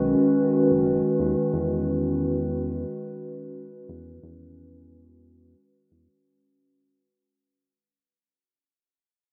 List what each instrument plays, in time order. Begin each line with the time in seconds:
Already playing: analog synth bass B1, ambient pad D#3 G#3 C#4 F#4 B4
0.71 analog synth bass F#1
0.86 analog synth bass F#1
1.19 analog synth bass D#2
1.53 analog synth bass E2
3.89 analog synth bass E2
4.23 analog synth bass E2
5.91 analog synth bass E2